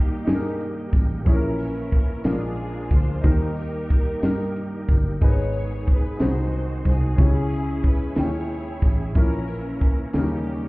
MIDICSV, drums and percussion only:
0, 0, Header, 1, 2, 480
1, 0, Start_track
1, 0, Tempo, 657895
1, 921, Time_signature, 6, 3, 24, 8
1, 7795, End_track
2, 0, Start_track
2, 0, Title_t, "Drums"
2, 195, Note_on_c, 9, 51, 71
2, 200, Note_on_c, 9, 54, 110
2, 201, Note_on_c, 9, 38, 118
2, 268, Note_off_c, 9, 51, 0
2, 273, Note_off_c, 9, 54, 0
2, 274, Note_off_c, 9, 38, 0
2, 442, Note_on_c, 9, 51, 41
2, 515, Note_off_c, 9, 51, 0
2, 676, Note_on_c, 9, 51, 34
2, 676, Note_on_c, 9, 54, 60
2, 678, Note_on_c, 9, 36, 99
2, 749, Note_off_c, 9, 51, 0
2, 749, Note_off_c, 9, 54, 0
2, 750, Note_off_c, 9, 36, 0
2, 918, Note_on_c, 9, 51, 55
2, 918, Note_on_c, 9, 54, 58
2, 920, Note_on_c, 9, 36, 108
2, 991, Note_off_c, 9, 51, 0
2, 991, Note_off_c, 9, 54, 0
2, 993, Note_off_c, 9, 36, 0
2, 1160, Note_on_c, 9, 51, 48
2, 1166, Note_on_c, 9, 54, 57
2, 1233, Note_off_c, 9, 51, 0
2, 1238, Note_off_c, 9, 54, 0
2, 1398, Note_on_c, 9, 51, 35
2, 1403, Note_on_c, 9, 36, 94
2, 1471, Note_off_c, 9, 51, 0
2, 1476, Note_off_c, 9, 36, 0
2, 1634, Note_on_c, 9, 54, 107
2, 1636, Note_on_c, 9, 51, 74
2, 1641, Note_on_c, 9, 38, 116
2, 1707, Note_off_c, 9, 54, 0
2, 1709, Note_off_c, 9, 51, 0
2, 1714, Note_off_c, 9, 38, 0
2, 1878, Note_on_c, 9, 51, 45
2, 1951, Note_off_c, 9, 51, 0
2, 2119, Note_on_c, 9, 51, 34
2, 2122, Note_on_c, 9, 36, 99
2, 2124, Note_on_c, 9, 54, 57
2, 2192, Note_off_c, 9, 51, 0
2, 2195, Note_off_c, 9, 36, 0
2, 2197, Note_off_c, 9, 54, 0
2, 2360, Note_on_c, 9, 54, 58
2, 2362, Note_on_c, 9, 51, 62
2, 2364, Note_on_c, 9, 36, 104
2, 2433, Note_off_c, 9, 54, 0
2, 2435, Note_off_c, 9, 51, 0
2, 2436, Note_off_c, 9, 36, 0
2, 2602, Note_on_c, 9, 51, 47
2, 2608, Note_on_c, 9, 54, 53
2, 2675, Note_off_c, 9, 51, 0
2, 2680, Note_off_c, 9, 54, 0
2, 2845, Note_on_c, 9, 51, 42
2, 2848, Note_on_c, 9, 36, 94
2, 2918, Note_off_c, 9, 51, 0
2, 2921, Note_off_c, 9, 36, 0
2, 3081, Note_on_c, 9, 51, 67
2, 3085, Note_on_c, 9, 54, 104
2, 3087, Note_on_c, 9, 38, 117
2, 3154, Note_off_c, 9, 51, 0
2, 3158, Note_off_c, 9, 54, 0
2, 3160, Note_off_c, 9, 38, 0
2, 3328, Note_on_c, 9, 51, 46
2, 3401, Note_off_c, 9, 51, 0
2, 3563, Note_on_c, 9, 51, 34
2, 3565, Note_on_c, 9, 36, 100
2, 3565, Note_on_c, 9, 54, 60
2, 3636, Note_off_c, 9, 51, 0
2, 3638, Note_off_c, 9, 36, 0
2, 3638, Note_off_c, 9, 54, 0
2, 3802, Note_on_c, 9, 51, 56
2, 3802, Note_on_c, 9, 54, 57
2, 3806, Note_on_c, 9, 36, 106
2, 3875, Note_off_c, 9, 51, 0
2, 3875, Note_off_c, 9, 54, 0
2, 3879, Note_off_c, 9, 36, 0
2, 4039, Note_on_c, 9, 51, 51
2, 4044, Note_on_c, 9, 54, 55
2, 4112, Note_off_c, 9, 51, 0
2, 4116, Note_off_c, 9, 54, 0
2, 4284, Note_on_c, 9, 51, 36
2, 4287, Note_on_c, 9, 36, 97
2, 4357, Note_off_c, 9, 51, 0
2, 4360, Note_off_c, 9, 36, 0
2, 4519, Note_on_c, 9, 54, 102
2, 4520, Note_on_c, 9, 51, 70
2, 4525, Note_on_c, 9, 38, 116
2, 4592, Note_off_c, 9, 54, 0
2, 4593, Note_off_c, 9, 51, 0
2, 4598, Note_off_c, 9, 38, 0
2, 4765, Note_on_c, 9, 51, 45
2, 4838, Note_off_c, 9, 51, 0
2, 4995, Note_on_c, 9, 51, 37
2, 4997, Note_on_c, 9, 54, 60
2, 5001, Note_on_c, 9, 36, 95
2, 5068, Note_off_c, 9, 51, 0
2, 5070, Note_off_c, 9, 54, 0
2, 5074, Note_off_c, 9, 36, 0
2, 5237, Note_on_c, 9, 51, 60
2, 5238, Note_on_c, 9, 54, 62
2, 5241, Note_on_c, 9, 36, 120
2, 5310, Note_off_c, 9, 51, 0
2, 5311, Note_off_c, 9, 54, 0
2, 5314, Note_off_c, 9, 36, 0
2, 5474, Note_on_c, 9, 51, 48
2, 5481, Note_on_c, 9, 54, 50
2, 5547, Note_off_c, 9, 51, 0
2, 5554, Note_off_c, 9, 54, 0
2, 5715, Note_on_c, 9, 51, 36
2, 5720, Note_on_c, 9, 36, 94
2, 5788, Note_off_c, 9, 51, 0
2, 5793, Note_off_c, 9, 36, 0
2, 5951, Note_on_c, 9, 51, 75
2, 5956, Note_on_c, 9, 38, 120
2, 5959, Note_on_c, 9, 54, 110
2, 6024, Note_off_c, 9, 51, 0
2, 6029, Note_off_c, 9, 38, 0
2, 6032, Note_off_c, 9, 54, 0
2, 6200, Note_on_c, 9, 51, 42
2, 6273, Note_off_c, 9, 51, 0
2, 6429, Note_on_c, 9, 54, 57
2, 6434, Note_on_c, 9, 51, 35
2, 6437, Note_on_c, 9, 36, 99
2, 6502, Note_off_c, 9, 54, 0
2, 6507, Note_off_c, 9, 51, 0
2, 6510, Note_off_c, 9, 36, 0
2, 6669, Note_on_c, 9, 54, 59
2, 6676, Note_on_c, 9, 51, 63
2, 6678, Note_on_c, 9, 36, 104
2, 6742, Note_off_c, 9, 54, 0
2, 6749, Note_off_c, 9, 51, 0
2, 6751, Note_off_c, 9, 36, 0
2, 6914, Note_on_c, 9, 54, 54
2, 6918, Note_on_c, 9, 51, 46
2, 6987, Note_off_c, 9, 54, 0
2, 6991, Note_off_c, 9, 51, 0
2, 7157, Note_on_c, 9, 51, 40
2, 7160, Note_on_c, 9, 36, 93
2, 7230, Note_off_c, 9, 51, 0
2, 7233, Note_off_c, 9, 36, 0
2, 7393, Note_on_c, 9, 51, 72
2, 7396, Note_on_c, 9, 54, 108
2, 7399, Note_on_c, 9, 38, 124
2, 7466, Note_off_c, 9, 51, 0
2, 7469, Note_off_c, 9, 54, 0
2, 7471, Note_off_c, 9, 38, 0
2, 7638, Note_on_c, 9, 51, 42
2, 7711, Note_off_c, 9, 51, 0
2, 7795, End_track
0, 0, End_of_file